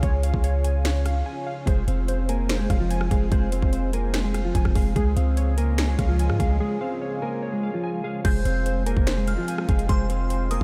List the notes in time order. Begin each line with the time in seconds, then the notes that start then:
Already playing: C#3 C#4 F4 G#4 C#5 F5 G#5
0.03 C#2 C#5, kick, closed hi-hat
0.23 F5, closed hi-hat
0.34 C#2, kick
0.44 C#5, closed hi-hat
0.64 G#5, closed hi-hat
0.85 C#5, finger snap, snare, closed hi-hat
1.06 F5, cross-stick, closed hi-hat
1.26 G#5
1.47 F5
1.67 F1 G#3 C4 G#4 C5, kick, closed hi-hat
1.88 F1 C4 C5 F5, closed hi-hat
2.08 C5, closed hi-hat
2.29 A#3 A#4 G#5, closed hi-hat
2.49 C5, finger snap, snare, closed hi-hat
2.60 G#3 G#4
2.70 F1 F5, kick, cross-stick, closed hi-hat
2.80 F3 F4
2.91 G#5, closed hi-hat
3.01 cross-stick
3.11 F1 G#3 G#4 F5, kick, closed hi-hat
3.32 F1 G#3 G#4 C5, kick, closed hi-hat
3.52 C4 C5 F5, closed hi-hat
3.62 F1, kick
3.73 C5, closed hi-hat
3.93 A#3 A#4 G#5, closed hi-hat
4.14 C5, finger snap, snare, closed hi-hat
4.24 G#3 G#4
4.34 F5, cross-stick, closed hi-hat
4.45 F3 F4
4.55 F1 G#5, kick, closed hi-hat
4.65 F1, kick, cross-stick
4.75 F1 G#3 G#4 F5, kick, open hi-hat
4.96 C#2 C#3 G#3 F4 G#4, kick, closed hi-hat
5.17 C#2 C4 C5 F5, closed hi-hat
5.37 C#5, closed hi-hat
5.58 A#3 A#4 G#5, closed hi-hat
5.78 C#5, finger snap, snare, closed hi-hat
5.89 G#3 G#4
5.99 C#2 F5, kick, cross-stick, closed hi-hat
6.09 F3 F4
6.19 G#5, closed hi-hat
6.30 G#2, cross-stick
6.40 C#2 G#3 G#4 F5, kick, closed hi-hat
6.60 G#3 G#4
6.81 C4 C5 F5
7.02 C#5
7.22 A#3 A#4 G#5
7.42 C#5
7.52 G#3 G#4
7.63 F5
7.74 F3 F4
7.84 G#5
8.04 G#3 G#4 F5
8.24 F1 G#3 C4 F4 G#4 C5 G6, kick, closed hi-hat, crash
8.45 F1 C4 C5 F5, closed hi-hat
8.66 C5, closed hi-hat
8.86 A#3 A#4 G#5, closed hi-hat
8.97 F1, kick
9.07 C5, finger snap, snare, closed hi-hat
9.17 G#3 G#4
9.27 F5 F6, closed hi-hat
9.38 F3 F4
9.48 G#5, closed hi-hat
9.58 cross-stick
9.68 F1 G#3 G#4 F5, kick, closed hi-hat
9.79 closed hi-hat
9.89 F1 G#3 G#4 C5 C6, kick, closed hi-hat
10.10 C4 C5 F5, closed hi-hat
10.30 C5, closed hi-hat
10.51 A#3 A#4 G#5 D#6, closed hi-hat